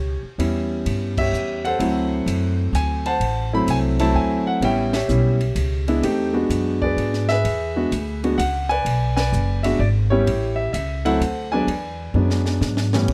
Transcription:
Already playing: C#2 G4 C#5
0.23 muted upright bass stroke
0.38 E2 G3 B3 C#4 E4, ride
0.86 G2, ride
1.18 G4 C#5 E5, kick, crash
1.33 E2, hi-hat pedal
1.65 A4 C5 F#5, ride
1.79 D2 F#3 A3 C4 E4, ride
2.26 F#2, hi-hat pedal, ride
2.73 D2 G#5, hi-hat pedal, ride
3.06 C5 F#5 A5, ride
3.20 A1, ride
3.53 F#3 A3 C4 E4 B5
3.67 C2 G#5, hi-hat pedal, ride
3.99 F#3 A3 C4 E4 A5, ride
4.14 D2 G#5
4.47 F#5
4.61 A1 G3 B3 C#4 E4 C#5 G5, ride
4.65 E5
4.93 G4 C#5 E5, snare, ride
5.08 B1 G3 B3 C#4 E4, hi-hat pedal
5.41 ride
5.55 C#2, hi-hat pedal, ride
5.88 G#3 B3 D4 E4, ride
6.03 E2 A3 C4 D#4 G4, ride
6.34 G#3 B3 D4 F#4
6.50 F#2, hi-hat pedal, ride
6.82 G#4 B4 D5, kick
6.96 G#2, ride
7.13 snare
7.29 G#4 B4 E5, snare
7.44 E2, ride
7.76 G#3 B3 D4 F#4
7.91 D2, hi-hat pedal, ride
8.23 G#3 B3 D4 F#4, ride
8.38 C#2 F#5, hi-hat pedal, ride
8.69 B4 D5 G#5, ride
8.85 B1, ride
9.17 B4 D5 G#5, snare, ride
9.33 F#1, hi-hat pedal
9.63 G#3 B3 D4 F#4 E5, ride
9.79 G#1 D5
10.10 G3 B3 C#4 E4 G4 C#5
10.26 A1, ride
10.56 E5
10.73 C#2 E5, hi-hat pedal, ride
11.05 F#3 A3 C4 E4 A4 C5 F#5, ride
11.20 D2, hi-hat pedal, ride
11.52 F#3 G#3 B3 D4 B4 D5 G#5
11.67 E2, ride
12.14 F#2 F#3 G#3 B3 D4
12.30 snare
12.46 snare
12.61 G#2, snare, hi-hat pedal
12.77 snare
12.93 A2 E3 G3 B3 C#4, snare
13.08 A2, kick, crash

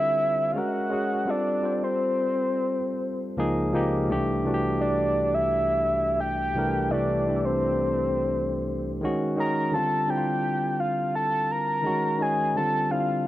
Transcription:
Already playing: D3 G3 C4 F4 A4 C5 E5
0.52 G#3 C#4 F5
0.56 F#4 A#4 F#5
0.89 G#3 C#4 F#4 G#4
1.25 G3 C4 F4 A4
1.30 D5
1.62 G3 C4 F4 C5
1.84 C5
3.37 C#2 F3 A#3 D#4 G#4
3.73 C#2 F3 A#3 D#4 G4
4.08 C2 E3 A3 D4 G4
4.44 C2 E3 A3 D4 F#4
4.54 G4
4.81 D5
5.34 E5
6.20 G5
6.55 C2 E3 A3 D4 A#4
6.91 C2 E3 A3 D4 G4 D5
7.26 C2 E3 A3 D4 G4
7.36 A4
7.45 C5
9.01 D#3 G#3 C#4 F#4
9.36 D#3 G#3 C#4 G#4
9.40 A#5
9.72 D3 G3 C4 F4 A5
10.07 D3 G3 C4 E4 G5
10.17 F4
10.80 F5
11.15 A5
11.51 A#5
11.83 D#3 G#3 C#4 F#4
12.19 D#3 G#3 C#4 G#5
12.23 D#4
12.55 D3 G3 C4 F4 A5
12.90 D3 G3 C4 E4 F5
13.00 F4

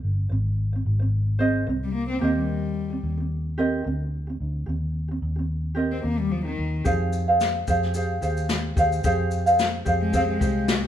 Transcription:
Already playing: C4 C5
0.03 G1
0.29 G#1 C4 C5
0.73 C4 C5
0.85 G#1
0.99 C4 C5
1.39 C4 G#4 C5 D#5
1.67 C2 C4 C5
1.84 G3
1.94 A#3
2.08 C4 C5
2.21 D#2 A#3 C4 G4 A#4 D#5
2.37 G3
2.90 C4 G4
3.03 D#2
3.18 C4 G4
3.58 C4 G4 A#4 D#5
3.84 D2 C4 G4
4.27 C4 G4
4.41 D2
4.66 D#2 C4 G4
5.08 C4 G4
5.22 D#2
5.36 C4 G4
5.75 C4 G4 A#4 D#5
5.92 C4
6.02 D#2 A#3 C4 G4
6.19 G3
6.31 F3
6.45 D#3 C4 G4
6.59 D#2
6.84 F2 G4 G#4 C5 F5, kick, shaker
7.13 shaker
7.28 G#4 C5 F5
7.40 snare, shaker
7.67 F2 G4 G#4 C5 F5, kick, shaker
7.83 snare
7.94 G4 G#4 C5 F5, shaker
8.21 D#2 G4 G#4 C5 F5, shaker
8.37 shaker
8.49 snare, shaker
8.76 D#2 G4 G#4 C5 F5, kick, shaker
8.92 shaker
9.04 F2 G4 G#4 C5 F5, kick, shaker
9.31 shaker
9.46 G#4 C5 F5, shaker
9.59 snare, shaker
9.85 F2 G4 G#4 C5 F5, kick, shaker
10.01 G#3
10.13 C4 G4 G#4 C5 F5, kick, shaker
10.28 G#3
10.40 C2 G4 G#4 C5 F5, kick, shaker
10.68 snare, shaker

